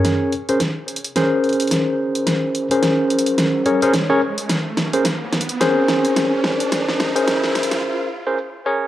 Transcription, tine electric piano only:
X:1
M:4/4
L:1/16
Q:"Swing 16ths" 1/4=108
K:Bbm
V:1 name="Tine electric piano"
[DABd]2 z [DABc] z4 [DABc]8- | [DABc]3 [DABc]6- [DABc] [DABd] [DABc] z [DABd] z2 | z3 [DABc] z4 [DABc]8- | [DABc]3 [DABc]6- [DABc] z [DABc] z2 [DABd]2 |]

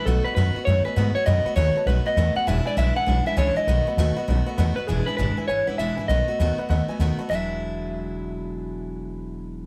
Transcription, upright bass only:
X:1
M:4/4
L:1/8
Q:"Swing" 1/4=199
K:E
V:1 name="Upright bass" clef=bass
B,,, z F,, z F,, z G,, z | F,, z D,, z B,,, z E,, z | E,,, z B,,, z B,,, z C,, z | B,,, z D,, z B,,, z E,, z |
E,,, z G,,, z G,,, G,,, E,,, G,,, | B,,, z D,, z D,, z D,, z | E,,,8- | E,,,8 |]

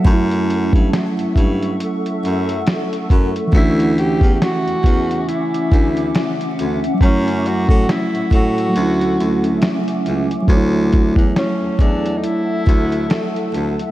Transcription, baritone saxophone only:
X:1
M:4/4
L:1/16
Q:"Swing 16ths" 1/4=69
K:D
V:1 name="Baritone saxophone" clef=bass
F,,3 G,, z G,, G,,2 z2 F,,2 z2 F,, z | D,,3 E,, z E,, E,,2 z2 D,,2 z2 D,, z | F,,3 A,, z A,, A,,2 D,,2 D,,2 z2 C,, z | D,,3 E,, z E,, E,,2 z2 D,,2 z2 D,, z |]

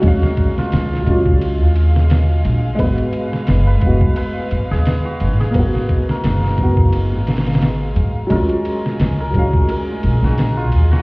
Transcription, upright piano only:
X:1
M:4/4
L:1/8
Q:"Swing 16ths" 1/4=87
K:Ebm
V:1 name="Upright piano"
[G,A,Df]3 [G,A,DF]4- [G,A,DF] | [A,CG]3 [A,CG]4- [A,CG] | [B,CG]3 [B,CG]4- [B,CG] | [G,A,DF]3 [G,A,Df]4- [G,A,Df] |]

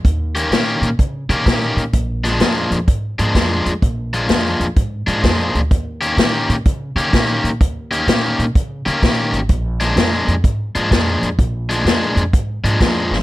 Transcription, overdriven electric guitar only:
X:1
M:4/4
L:1/8
Q:"Swing" 1/4=127
K:Eb
V:1 name="Overdriven electric guitar" clef=bass
z [E,B,_DG] [E,B,DG] z2 [E,B,DG] [E,B,DG] z | z [B,,F,A,D] [B,,F,A,D] z2 [B,,F,A,D] [B,,F,A,D] z | z [B,,F,A,D] [B,,F,A,D] z2 [B,,F,A,D] [B,,F,A,D] z | z [E,B,_DG] [E,B,DG] z2 [E,B,DG] [E,B,DG] z |
z [E,B,_DG] [E,B,DG] z2 [E,B,DG] [E,B,DG] z | z [B,,F,A,D] [B,,F,A,D] z2 [B,,F,A,D] [B,,F,A,D] z | z [B,,F,A,D] [B,,F,A,D] z2 [B,,F,A,D] [B,,F,A,D] z |]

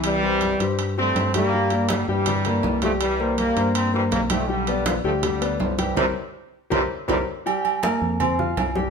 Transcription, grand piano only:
X:1
M:4/4
L:1/8
Q:1/4=162
K:Cmix
V:1 name="Grand piano"
[E,Ee] [G,Gc]2 [G,Gc]2 [G,Gc]2 [G,Gg] | [G,Gg] [B,Bd]2 [G,Gg] [G,Gg] [B,Bd]2 [G,Gg]- | [G,Gg] [B,Bc]2 [B,Bc]2 [B,Bc]2 [G,Gg] | [G,Gg] [=B,=Bd]2 [G,Gg] [G,Gg] [B,Bd]2 [G,Gg] |
[GBc] z3 [GBc] z [GBc] z | [G,Gg]2 [B,Bb]2 [Ccc'] [Fff']2 [G,Gg] |]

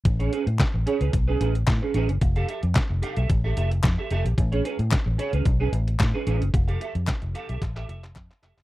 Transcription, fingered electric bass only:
X:1
M:4/4
L:1/16
Q:1/4=111
K:A
V:1 name="Fingered electric bass" clef=bass
A,,,2 z A,, z A,,, z C,, B,,,2 A,,,2 A,, z A,,, F,,, | =F,,,2 z =F,, z F,,, z B,,, A,,,2 F,,,2 F,, z F,,, _B,,, | A,,,2 z A,, z A,,, z C,, B,,,2 A,,,2 A,, z A,,, F,,, | =F,,,2 z =F,, z F,,, z B,,, A,,,2 F,,,2 F,, z F,,, ^F,,, |]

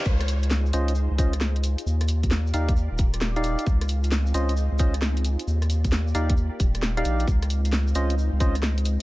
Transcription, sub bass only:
X:1
M:4/4
L:1/16
Q:"Swing 16ths" 1/4=133
K:Db
V:1 name="Sub bass" clef=bass
D,,6 D,,3 D,,6 z | E,,6 E,,3 E,,,6 z | D,,6 D,,3 D,,6 z | E,,6 E,,3 z E,,,4 B,,,2 |
D,,6 D,,3 D,,6 z |]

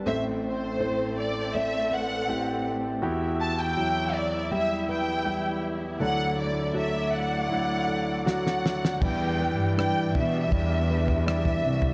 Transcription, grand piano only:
X:1
M:4/4
L:1/8
Q:1/4=81
K:Em
V:1 name="Grand piano"
[A,Cc]2 [A,Cc]2 [A,Cd]2 [A,CG]2 | [EFG]2 [F,E]2 [G,EG]2 [G,EG]2 | [F,DA]2 [F,DA]2 [F,DE]2 [F,DF]2 | [G,Ed] [G,EB] [G,Ed]2 [G,Ed]2 [G,Ed]2 |]
V:2 name="Grand piano" clef=bass
[A,,,A,,]8 | E,,8 | [D,,D,]8 | E,3 z4 z |]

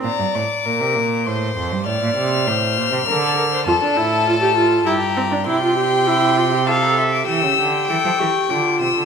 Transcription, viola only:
X:1
M:3/4
L:1/16
Q:1/4=99
K:Bb
V:1 name="Viola"
z12 | z12 | F D =E2 F G F2 E2 C D | =E F G2 E2 F G A4 |
G4 A2 G2 F4 |]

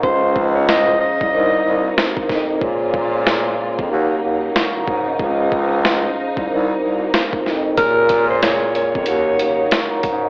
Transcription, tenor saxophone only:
X:1
M:4/4
L:1/16
Q:"Swing 16ths" 1/4=93
K:Bbm
V:1 name="Tenor saxophone"
c3 d e2 e6 z4 | z16 | z16 | B3 c d2 d6- d z3 |]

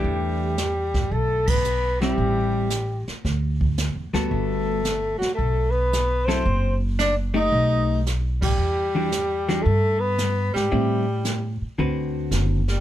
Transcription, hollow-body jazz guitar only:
X:1
M:4/4
L:1/8
Q:"Swing" 1/4=112
K:Em
V:1 name="Hollow-body jazz guitar"
[E,A,DG]2 z4 z [G,CE]- | [G,CE]2 z4 z [G,B,FA]- | [G,B,FA]2 z4 z [F,CEA] | z3 [A,^DG]3 z2 |
z [E,G,DF] z [E,G,DF] z4 | [G,CE] z3 [D,CFB]3 z |]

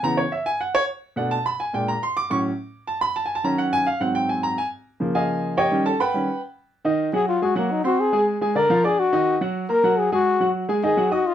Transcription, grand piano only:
X:1
M:4/4
L:1/8
Q:1/4=211
K:G#m
V:1 name="Grand piano"
a c e g f c z2 | f =a b g =g ^a ^b =d' | c' z3 =a b (3a g a | a f g ^e f =g ^g a |
g z3 [Gd^eg]3 [=Gcd=g]- | [=Gcd=g] [=A=a] [Bfgb]3 z3 | [D,Dd]2 [F,Ff]2 [G,Gg] [F,Ff]2 [^B,^B^b]- | [^B,^B^b] [G,Gg]2 [G,Gg] [=D,=D=d] [^E,^E^e] [Dd=d']2 |
[D,Dd]2 [F,Ff]2 [A,Aa] [F,Ff]2 [G,Gg]- | [G,Gg] [F,Ff]2 [G,Gg] [D,Dd] [F,Ff] [Ddd']2 |]
V:2 name="Grand piano" clef=bass
[C,E,B,] z6 z | [B,,=A,=D] z3 [^A,,G,D] z3 | [=A,,F,C] z6 z | [D,F,C]3 z [G,,F,^B,]4 |
z3 [C,^E,A,]4- [C,E,A,] | [D,=G,C] z2 [D,G,C] z4 | z8 | z8 |
z8 | z8 |]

